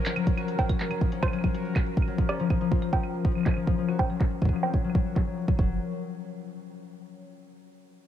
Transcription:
0.00 0.53 F3 medium
0.00 1.11 C#4 medium
0.00 5.60 A#4 medium
0.06 0.15 F#3 loud
0.06 clap loud
0.06 closed hi-hat medium
0.16 0.26 F#3 loud
0.16 closed hi-hat soft
0.16 claves medium
0.27 0.53 F#3 loud
0.27 kick loud
0.27 closed hi-hat medium
0.37 1.07 F#4 loud
0.37 closed hi-hat soft
0.37 claves medium
0.48 closed hi-hat medium
0.59 0.89 F#3 medium
0.59 kick loud
0.59 closed hi-hat soft
0.59 cowbell medium
0.69 kick loud
0.69 closed hi-hat medium
0.69 claves medium
0.80 clap loud
0.80 closed hi-hat soft
0.91 1.21 F#3 loud
0.91 closed hi-hat medium
0.91 claves medium
1.01 2.17 F3 medium
1.01 kick loud
1.01 closed hi-hat soft
1.12 2.29 C#4 medium
1.12 closed hi-hat medium
1.23 1.32 F#3 loud
1.23 kick loud
1.23 closed hi-hat soft
1.23 cowbell loud
1.23 claves medium
1.28 claves medium
1.33 1.43 F#3 loud
1.33 closed hi-hat medium
1.33 claves soft
1.39 claves soft
1.44 1.75 F#3 loud
1.44 kick loud
1.44 closed hi-hat soft
1.44 claves soft
1.54 2.24 F#4 loud
1.54 closed hi-hat medium
1.65 closed hi-hat soft
1.76 2.06 F#3 medium
1.76 kick loud
1.76 clap loud
1.76 closed hi-hat medium
1.76 claves medium
1.86 closed hi-hat soft
1.97 kick loud
1.97 closed hi-hat medium
2.02 claves soft
2.08 2.23 F#3 loud
2.08 closed hi-hat soft
2.18 2.38 F3 medium
2.18 kick loud
2.18 closed hi-hat medium
2.29 3.46 C#4 medium
2.29 closed hi-hat soft
2.29 cowbell loud
2.29 claves medium
2.40 2.49 F3 loud
2.40 closed hi-hat medium
2.50 2.60 F3 loud
2.50 kick loud
2.50 closed hi-hat soft
2.50 claves medium
2.61 2.92 F3 loud
2.61 closed hi-hat medium
2.71 3.95 F4 loud
2.71 kick loud
2.71 closed hi-hat soft
2.82 closed hi-hat medium
2.82 claves medium
2.93 3.24 F3 medium
2.93 kick loud
2.93 closed hi-hat soft
2.93 cowbell loud
3.03 closed hi-hat medium
3.03 claves soft
3.14 closed hi-hat soft
3.25 3.34 F3 loud
3.25 kick loud
3.25 closed hi-hat medium
3.32 closed hi-hat medium
3.35 3.55 F3 medium
3.35 closed hi-hat soft
3.35 claves soft
3.38 closed hi-hat medium
3.38 claves soft
3.41 claves soft
3.43 clap loud
3.43 claves medium
3.46 4.69 C#4 medium
3.46 kick loud
3.46 claves medium
3.49 claves medium
3.51 claves medium
3.54 closed hi-hat soft
3.54 claves medium
3.57 3.66 F3 loud
3.57 claves medium
3.62 closed hi-hat soft
3.67 3.77 F3 loud
3.67 kick loud
3.67 closed hi-hat medium
3.73 closed hi-hat soft
3.78 3.94 F3 medium
3.78 closed hi-hat soft
3.89 3.95 F#4 loud
3.89 closed hi-hat medium
3.89 claves medium
3.99 kick loud
3.99 cowbell loud
4.10 4.41 F#3 medium
4.10 closed hi-hat medium
4.10 claves medium
4.20 kick loud
4.20 clap loud
4.20 closed hi-hat soft
4.24 closed hi-hat soft
4.28 closed hi-hat soft
4.31 closed hi-hat medium
4.42 4.72 F#3 loud
4.42 kick loud
4.42 claves soft
4.45 kick medium
4.45 claves soft
4.49 5.64 F3 medium
4.49 kick medium
4.56 claves medium
4.63 4.70 C4 medium
4.63 closed hi-hat soft
4.63 cowbell loud
4.63 claves medium
4.74 4.83 F#3 medium
4.74 kick loud
4.74 closed hi-hat medium
4.84 4.94 F#3 loud
4.84 closed hi-hat soft
4.87 closed hi-hat soft
4.90 closed hi-hat soft
4.90 claves medium
4.92 closed hi-hat soft
4.95 5.15 F#3 loud
4.95 kick loud
4.95 closed hi-hat loud
4.98 closed hi-hat soft
5.00 closed hi-hat soft
5.03 closed hi-hat soft
5.06 5.12 F#4 medium
5.06 closed hi-hat soft
5.16 5.26 F#3 medium
5.16 kick loud
5.16 clap loud
5.16 claves medium
5.27 5.47 F#3 medium
5.27 closed hi-hat soft
5.30 closed hi-hat soft
5.34 closed hi-hat soft
5.37 closed hi-hat medium
5.41 closed hi-hat soft
5.45 5.58 F#3 medium
5.45 kick loud
5.45 closed hi-hat soft
5.45 claves medium
5.59 5.79 F#1 medium
5.59 5.79 F#3 medium
5.59 kick loud

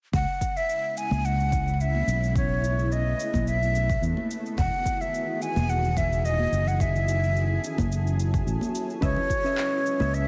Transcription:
0.13 0.24 C#2 medium
0.13 2.33 C#3 medium
0.13 2.33 G#3 medium
0.13 6.76 B3 medium
0.13 2.33 C#4 medium
0.13 4.26 E4 medium
0.13 0.58 F#5 medium
0.13 kick loud
0.13 cabasa soft
0.41 kick soft
0.41 cabasa medium
0.57 0.99 E5 medium
0.57 cabasa soft
0.69 cabasa soft
0.97 1.27 G#5 medium
0.97 cabasa medium
1.11 2.02 C#2 medium
1.11 high conga medium
1.11 cabasa soft
1.25 1.74 F#5 loud
1.25 cabasa soft
1.40 cabasa soft
1.52 kick medium
1.52 cabasa medium
1.68 cabasa soft
1.74 1.83 F#5 medium
1.80 2.36 E5 medium
1.80 cabasa soft
1.95 high conga medium
2.07 3.13 B1 medium
2.07 cabasa medium
2.23 cabasa soft
2.36 4.28 A3 medium
2.36 2.94 C#5 medium
2.36 kick loud
2.36 cabasa soft
2.64 cabasa medium
2.79 cabasa soft
2.92 3.49 D#5 medium
2.92 cabasa soft
3.20 cabasa medium
3.34 3.96 B1 medium
3.34 kick medium
3.34 high conga medium
3.34 cabasa soft
3.47 4.03 E5 medium
3.47 cabasa soft
3.63 cabasa soft
3.75 cabasa medium
3.90 kick medium
3.90 cabasa soft
4.02 4.13 E2 medium
4.02 cabasa soft
4.17 high conga medium
4.31 6.78 D#3 medium
4.31 6.78 E3 medium
4.31 6.78 F#4 medium
4.31 8.99 G#4 medium
4.31 cabasa medium
4.46 cabasa soft
4.58 4.68 E1 medium
4.58 5.03 F#5 medium
4.58 kick loud
4.58 cabasa soft
4.86 kick medium
4.86 cabasa medium
5.01 5.43 E5 medium
5.01 cabasa soft
5.14 cabasa soft
5.42 5.71 G#5 medium
5.42 cabasa medium
5.56 6.46 E1 medium
5.56 high conga medium
5.56 cabasa soft
5.70 5.99 F#5 loud
5.70 cabasa soft
5.85 cabasa soft
5.97 6.27 E5 medium
5.97 kick loud
5.97 cabasa medium
6.13 cabasa soft
6.25 6.69 D#5 medium
6.25 cabasa soft
6.39 high conga medium
6.52 7.57 F#1 medium
6.52 cabasa medium
6.68 6.82 F#5 medium
6.68 cabasa soft
6.80 9.00 F#3 medium
6.80 9.00 C#4 medium
6.80 9.00 E4 medium
6.80 9.00 A4 medium
6.80 7.64 E5 medium
6.80 kick loud
6.80 cabasa soft
6.96 cabasa soft
7.08 cabasa medium
7.24 cabasa soft
7.36 cabasa soft
7.64 cabasa medium
7.78 8.41 F#1 medium
7.78 kick medium
7.78 high conga medium
7.78 cabasa soft
7.92 cabasa soft
8.07 cabasa soft
8.20 cabasa medium
8.34 kick medium
8.34 cabasa soft
8.47 8.57 A1 medium
8.47 cabasa soft
8.61 high conga medium
8.61 cabasa soft
8.75 cabasa medium
8.90 cabasa soft
9.01 9.13 C#2 medium
9.01 10.28 C#3 medium
9.01 10.28 G#3 medium
9.01 10.28 B3 medium
9.01 9.17 C#4 medium
9.01 10.28 E4 medium
9.01 9.17 B4 medium
9.01 10.16 C#5 medium
9.01 9.17 D#5 medium
9.01 9.18 E5 medium
9.01 kick loud
9.01 cabasa soft
9.16 low conga medium
9.30 kick medium
9.30 cabasa medium
9.44 9.96 C#4 medium
9.44 9.97 B4 medium
9.44 9.97 D#5 medium
9.44 9.97 E5 medium
9.44 cabasa soft
9.58 clap medium
9.58 cabasa soft
9.86 cabasa medium
9.99 10.28 C#2 medium
9.99 10.28 C#4 medium
9.99 10.28 B4 medium
9.99 10.28 D#5 medium
9.99 10.28 E5 medium
9.99 high conga medium
9.99 cabasa soft
10.14 10.28 E5 loud
10.14 cabasa soft

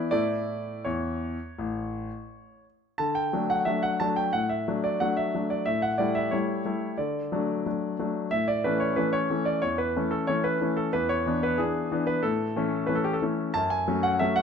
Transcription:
0.11 0.63 A2 medium
0.11 0.71 A3 soft
0.11 0.71 E4 soft
0.11 0.85 D5 medium
0.85 1.36 E2 medium
0.85 2.64 C#5 medium
1.58 2.08 A1 soft
2.98 3.32 D3 soft
2.98 3.15 A5 medium
3.15 3.49 G5 medium
3.33 3.63 F#3 soft
3.33 3.63 A3 soft
3.33 3.63 D4 soft
3.50 3.66 F#5 medium
3.65 3.96 F#3 soft
3.65 3.96 A3 soft
3.65 3.97 D4 soft
3.65 3.82 E5 medium
3.83 3.99 F#5 medium
4.00 4.30 F#3 soft
4.00 4.30 A3 soft
4.00 4.30 D4 soft
4.00 4.16 A5 medium
4.16 4.33 G5 medium
4.33 4.66 A2 soft
4.33 4.49 F#5 medium
4.49 4.83 E5 medium
4.68 4.97 F#3 soft
4.68 4.97 A3 soft
4.68 4.98 D4 soft
4.84 5.00 D5 medium
5.00 5.31 F#3 soft
5.00 5.31 A3 soft
5.00 5.31 D4 soft
5.00 5.17 F#5 medium
5.17 5.50 E5 medium
5.34 5.64 F#3 soft
5.34 5.64 A3 soft
5.34 5.64 D4 soft
5.50 5.67 D5 medium
5.66 5.99 A2 soft
5.66 5.83 E5 medium
5.82 5.99 F#5 medium
5.98 6.29 G3 soft
5.98 6.29 A3 soft
5.98 6.30 E4 soft
5.98 6.15 D5 medium
6.15 6.32 E5 medium
6.31 6.62 G3 soft
6.31 6.63 A3 soft
6.31 6.63 E4 soft
6.31 6.98 C#5 medium
6.65 6.95 G3 soft
6.65 6.96 A3 soft
6.65 6.96 E4 soft
6.98 7.31 D3 soft
6.98 7.98 D5 soft
7.32 7.62 F#3 soft
7.32 7.62 A3 soft
7.32 7.63 D4 soft
7.66 7.96 F#3 soft
7.66 7.96 A3 soft
7.66 7.96 D4 soft
7.99 8.29 F#3 soft
7.99 8.29 A3 soft
7.99 8.29 D4 soft
8.31 8.64 A2 soft
8.31 8.48 E5 medium
8.48 8.64 D5 medium
8.64 8.94 E3 soft
8.64 8.95 A3 soft
8.64 8.95 C#4 soft
8.64 8.81 B4 medium
8.80 8.97 C#5 medium
8.96 9.27 E3 soft
8.96 9.27 A3 soft
8.96 9.27 C#4 soft
8.96 9.13 B4 medium
9.13 9.46 C#5 medium
9.30 9.60 E3 soft
9.30 9.60 A3 soft
9.30 9.60 C#4 soft
9.45 9.62 D5 medium
9.62 9.95 E2 soft
9.62 9.79 C#5 medium
9.78 10.11 B4 medium
9.96 10.25 E3 soft
9.96 10.26 A3 soft
9.96 10.26 C#4 soft
10.11 10.28 A4 medium
10.27 10.58 E3 soft
10.27 10.58 A3 soft
10.27 10.58 C#4 soft
10.27 10.44 C#5 medium
10.44 10.77 B4 medium
10.61 10.90 E3 soft
10.61 10.90 A3 soft
10.61 10.91 C#4 soft
10.77 10.93 A4 medium
10.93 11.25 E2 soft
10.93 11.09 B4 medium
11.09 11.42 C#5 medium
11.26 11.55 E3 soft
11.26 11.56 B3 soft
11.26 11.56 D4 soft
11.43 11.59 B4 medium
11.58 11.88 E3 soft
11.58 11.88 B3 soft
11.58 11.88 D4 soft
11.58 12.07 G#4 medium
11.92 12.21 E3 soft
11.92 12.21 B3 soft
11.92 12.21 D4 soft
12.07 12.23 B4 medium
12.23 12.55 A2 soft
12.23 12.86 A4 medium
12.56 12.86 E3 soft
12.56 12.86 A3 soft
12.56 12.86 C#4 soft
12.86 13.18 E3 soft
12.86 13.19 A3 soft
12.86 13.19 C#4 soft
12.86 12.95 B4 medium
12.95 13.04 A4 medium
13.04 13.13 G4 medium
13.13 13.22 A4 medium
13.22 13.52 E3 soft
13.22 13.52 A3 soft
13.22 13.52 C#4 soft
13.54 13.87 F#2 medium
13.54 13.71 A5 medium
13.70 14.04 G#5 medium
13.88 14.17 F#3 soft
13.88 14.17 A3 soft
13.88 14.18 C#4 soft
14.03 14.20 F#5 medium
14.19 14.42 F#3 soft
14.19 14.42 A3 soft
14.19 14.42 C#4 soft
14.19 14.36 E5 medium
14.36 14.42 F#5 medium

